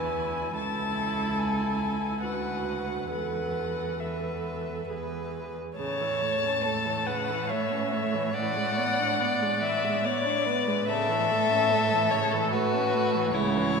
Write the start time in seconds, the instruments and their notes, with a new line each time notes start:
Already playing: cello E2, viola E4, violin B4 G#5
0.57 cello C#2, viola E4, violin A4 A5
1.39 violin G#5
2.21 cello D2, viola F#4, violin B4 F#5
3.10 cello E2, viola A4, violin B4 F#5
4.00 viola A4, violin B4 E5
4.88 cello E2, viola G#4, violin B4
5.77 cello A2, viola C#3, violin C#5 A5
6.01 viola E3
6.22 viola A3
6.45 viola C#4
6.64 viola A3, violin A4
6.87 viola E3
7.05 viola C#3, violin B4 F#5
7.30 viola E3
7.50 viola A3, violin C#5 E5
7.72 viola C#4
7.91 viola A3, violin C#5
8.14 viola E3
8.33 viola E3, violin D5 F#5
8.56 viola G#3
8.77 viola B3
8.99 viola D4
9.19 viola B3, violin D5
9.42 viola G#3
9.62 viola E3, violin E5
9.84 viola G#3
10.04 viola B3, violin C#5 D5
10.25 viola D4
10.46 viola B3, violin B4
10.67 viola G#3
10.87 cello A2, viola C#3, violin A4 E5
11.09 viola E3
11.31 viola A3
11.51 viola C#4
11.72 viola A3
11.93 viola E3
12.11 viola C#3, violin C#5
12.31 viola E3, violin A4
12.52 viola A3, violin F#4 B4
12.75 viola C#4
12.95 viola A3
13.16 viola E3
13.34 cello C#2, viola C#3, violin E4 C#5
13.57 viola E3